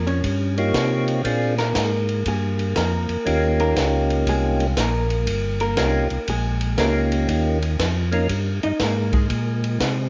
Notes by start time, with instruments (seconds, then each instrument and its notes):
Already playing: tonewheel organ F2
0.07 hollow-body jazz guitar C#4 C#5, ride
0.23 tonewheel organ G2, kick, ride
0.57 tonewheel organ A#3 D#4 F4 G4 C#5, ride
0.74 tonewheel organ C3, kick, snare, hi-hat pedal, ride
1.08 ride
1.24 tonewheel organ A#2 A#3 C4 D4 F4 G#4, kick, ride
1.58 hollow-body jazz guitar A#3 A#4, snare, ride
1.75 tonewheel organ G#2, kick, snare, hi-hat pedal, ride
2.09 ride
2.25 tonewheel organ G2, hollow-body jazz guitar A#3 G#4, kick, ride
2.59 ride
2.76 tonewheel organ F2, hollow-body jazz guitar A#3 A#4, kick, snare, hi-hat pedal, ride
3.09 tonewheel organ F2, ride
3.25 tonewheel organ D#2 A#3 C#4 D#4 F4 G4, kick, ride
3.60 hollow-body jazz guitar A#3 A#4, ride
3.76 tonewheel organ C#2, kick, snare, hi-hat pedal, ride
4.10 ride
4.26 tonewheel organ C2, hollow-body jazz guitar G#3 G#4, kick, ride
4.60 ride
4.77 tonewheel organ A#1, hollow-body jazz guitar A#3 A#4, kick, snare, hi-hat pedal, ride
5.10 ride
5.26 tonewheel organ G1, kick, ride
5.60 hollow-body jazz guitar A#3 A#4, ride
5.76 tonewheel organ C2 A#3 C#4 D#4 F4 G4, kick, snare, hi-hat pedal, ride
6.10 tonewheel organ C2, ride
6.27 tonewheel organ A#1, hollow-body jazz guitar G#3 G#4, kick, ride
6.61 ride
6.78 tonewheel organ C#2 A#3 C#4 D#4 F4 G4, hollow-body jazz guitar A#3 A#4, kick, snare, hi-hat pedal, ride
7.12 ride
7.28 tonewheel organ D#2 A#3 C#4 D#4 F4 G4, kick, ride
7.62 ride
7.79 tonewheel organ F2, kick, snare, hi-hat pedal, ride
8.12 tonewheel organ A#3 C#4 D#4 F4 A#4, ride
8.29 tonewheel organ G2, kick, ride
8.63 tonewheel organ G2, hollow-body jazz guitar D#4 D#5, ride
8.79 tonewheel organ G#2, hollow-body jazz guitar A#3 A#4, kick, snare, hi-hat pedal, ride
9.13 hollow-body jazz guitar G#3 G#4, kick, ride
9.30 tonewheel organ A#2, kick, ride
9.64 ride
9.80 tonewheel organ C3, kick, snare, hi-hat pedal, ride